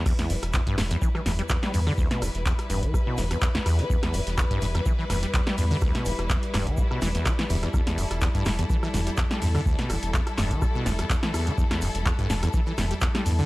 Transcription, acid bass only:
X:1
M:4/4
L:1/16
Q:"Swing 16ths" 1/4=125
K:Em
V:1 name="Acid bass" clef=bass
z E,, G,, z E,, G,, G,, E,, E, E, E,, G, E,, G, G,, D, | D,, B,, E,,, z E,, z G,, E, E,, B,, E,,, E,, E,, D,, E,, E, | E,, E,, G,, z E,, G,, G,, E,, E, E, E,, G, E,, G, G,, D, | D,, B,, E,,, z E,, z G,, E, E,, B,, E, E,, G, E, E,, E,, |
E,, E,, G,, z E,, G,, G,, E,, E, E, E,, G, E,, G, G,, D, | D,, B,, E,,, z E,, z G,, E, E,, B,, E,,, E,, E,, E, E,, E, | E,, E,, G,, z E,, G,, G,, E,, E, E, E,, G, E,, G, G,, D, |]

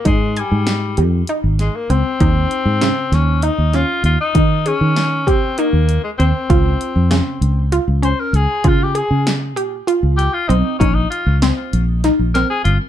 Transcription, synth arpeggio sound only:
X:1
M:7/8
L:1/8
Q:1/4=98
K:Dblyd
V:1 name="Synth arpeggio sound"
E a2 G E2 C | E2 D,2 E D2 | E A2 G E2 C | F2 D,2 F D2 |
F A2 G F2 C | E2 C2 E C2 |]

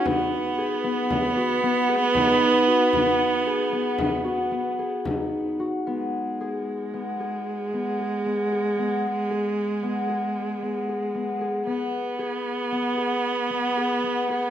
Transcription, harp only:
X:1
M:11/8
L:1/8
Q:1/4=114
K:G#m
V:1 name="Harp"
B,2 G B,2 F B, G D2 F | B,2 G B,2 F B, G D2 F | B,2 G2 B, G2 B, G B, G | B,2 G2 B, G2 B, G B, G |
B,2 G2 B, G2 B, G B, G |]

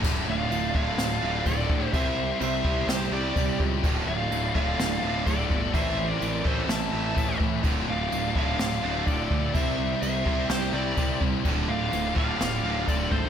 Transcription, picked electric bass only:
X:1
M:4/4
L:1/8
Q:1/4=126
K:Dm
V:1 name="Picked electric bass" clef=bass
D,,, D,,, D,,, D,,, D,,, D,,, D,,, D,, | C,,2 C,, C,, C,, C,, C,, ^C,, | D,,, D,,, D,,, D,,, D,,, D,,, D,,, G,,, | A,,,2 A,,, A,,, A,,, A,,, A,,, A,, |
D,,, D,,, D,,, D,,, D,,, D,,, D,,, D,, | C,,2 C,, C,, C,, C,, C,, C,, | D,,, D,,, D,,, D,,, D,,, D,,, D,,, ^G,,, |]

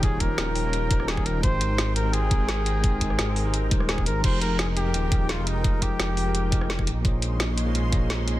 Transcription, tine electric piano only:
X:1
M:4/4
L:1/16
Q:1/4=171
K:Fm
V:1 name="Tine electric piano"
[E,EFGd]6- [E,EFGd] [E,EFGd]3 [E,EFGc] z4 z | [A,EGBc]6- [A,EGBc] [A,EGBc]3 [A,EGBc] z4 z | [A,EBcg]6- [A,EBcg] [A,EGBc]3 [A,EGBc] z4 z | [F,EGAB]6- [F,EGAB] [F,EGAB]3 [F,EGAB] z4 z |
[F,A,EGB]6- [F,A,EGB] [F,EGAB]3 [F,EGAB] z4 z | [B,FAcde]6- [B,FAcde] [B,FAcde]3 [B,FAcde] z4 z |]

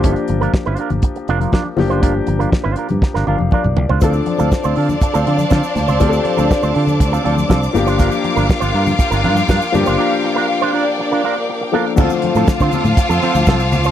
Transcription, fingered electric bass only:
X:1
M:4/4
L:1/16
Q:1/4=121
K:Gm
V:1 name="Fingered electric bass" clef=bass
G,,,2 G,,,2 z G,,, z G,,, z2 F,,,2 z2 ^F,,,2 | G,,,2 G,,,2 z G,,, z G,, z G,,, G,,, F,,, z =B,,, C,, ^C,, | D,,2 z D,, z D,, D,2 z D,, D,2 D, z D,, ^C,, | D,,2 z D,, z D,, D,2 D,,2 D,,2 C,,2 G,,,2- |
G,,,2 z G,,, z G,,, G,,2 z G,,, G,,2 G,, z G,, ^F,,, | z16 | D,, z2 A,, z D, z A,, z F,, z D,, C,,2 ^C,,2 |]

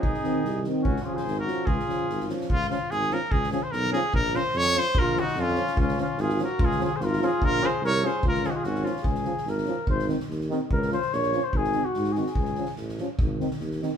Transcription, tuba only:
X:1
M:2/4
L:1/8
Q:"Swing 16ths" 1/4=146
K:Db
V:1 name="Tuba" clef=bass
A,,, z C,,2 | D,, z A,,,2 | D,, z A,,,2 | D,,2 A,,,2 |
D,,2 _C,,2 | B,,,2 F,,2 | B,,,2 F,,2 | D,,2 A,,,2 |
D,,2 A,,,2 | B,,,2 C,,2 | D,,2 A,,,2 | D,,2 A,,,2 |
A,,,2 E,,2 | D,,2 B,,,2 | A,,,2 A,,2 | D,,2 =A,,,2 |
A,,,2 E,,2 |]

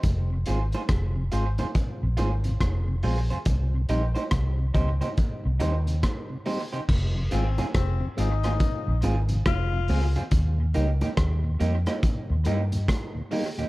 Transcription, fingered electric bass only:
X:1
M:4/4
L:1/16
Q:"Swing 16ths" 1/4=70
K:Fm
V:1 name="Fingered electric bass" clef=bass
F,,,2 A,,, z F,,,2 A,,, z2 B,,, A,,,2 F,,,2 B,,, z | C,,2 B,,, z C,,2 D,, z2 C,, E,,2 z4 | F,,,2 A,,, z F,,, z A,,,2 z B,,, A,,,2 F,,,2 D,, z | E,,2 D,, z E,,2 F,, z2 E,, G,,2 z4 |]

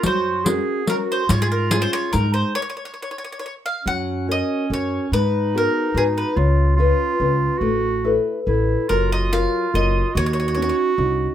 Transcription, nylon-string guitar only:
X:1
M:3/4
L:1/8
Q:1/4=143
K:Db
V:1 name="Nylon-string guitar"
G,2 [DGB]2 [DGB]2 | A,2 [DFA]2 A,2 | z6 | [K:F#] F,2 [FAc]2 [FAc]2 |
G,2 [B,FG]2 [FGB]2 | C,2 [CEB]2 [CEB]2 | =A,2 [=E=AB]2 [EAB]2 | F,2 [F,EA]2 [F,EA]2 |
D,2 [CDF]2 [CDF]2 |]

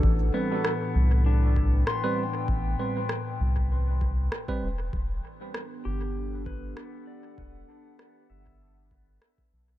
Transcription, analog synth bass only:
X:1
M:4/4
L:1/8
Q:"Swing 16ths" 1/4=98
K:Ador
V:1 name="Analog synth bass" clef=bass
A,,, z2 C,,3 z2 | A,,, z2 C,,3 z E,,, | E,,, z2 G,,,3 z2 | E,,, z2 G,,,3 z B,,, |]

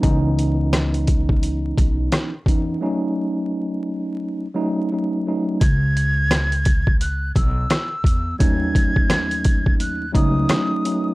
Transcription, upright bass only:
X:1
M:4/4
L:1/8
Q:"Swing 16ths" 1/4=86
K:C#m
V:1 name="Upright bass" clef=bass
C,,4- C,, B,,, z E,, | z8 | C,,4- C,, B,,, z E,, | D,,4- D,, C,, z2 |]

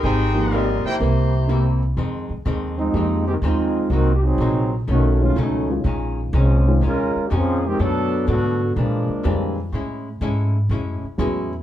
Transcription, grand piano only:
X:1
M:4/4
L:1/8
Q:"Swing" 1/4=124
K:Fm
V:1 name="Grand piano"
z [F,B,EG]3 [B,C=EB] z [B,CEG] z | z4 [F,B,EG] z3 | z4 z [^D,A,^CF] z [D,A,CF]- | [^D,A,^CF]2 z [E,A,_DF] z4 |
z6 [=D,G,CF] z | z6 [_G,_C=E^G] z |]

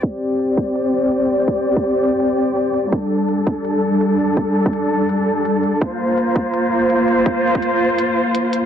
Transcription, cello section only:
X:1
M:4/4
L:1/8
Q:"Swing 16ths" 1/4=166
K:Gm
V:1 name="Cello section"
[CGd]8- | [CGd]8 | [G,DA]8- | [G,DA]8 |
[B,Fc]8- | [B,Fc]8 |]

